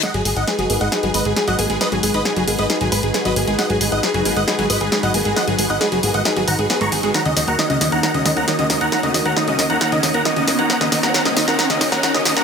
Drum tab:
HH |xxoxxxoxxxoxxxox|xxoxxxoxxxoxxxox|xxoxxxoxxxoxxxox|xxoxxxoxxxoxxxox|
SD |o---o---o---o---|o---o---o---o---|o---o---o---o---|o---o---o---o---|

HH |xxoxxxoxxxoxxxox|xxoxxxoxxxoxxxox|xxoxxxoxxxoxxxox|
SD |o-o-o-o-o-o-o-o-|o-o-o-o-o-o-o-o-|oooooooooooooooo|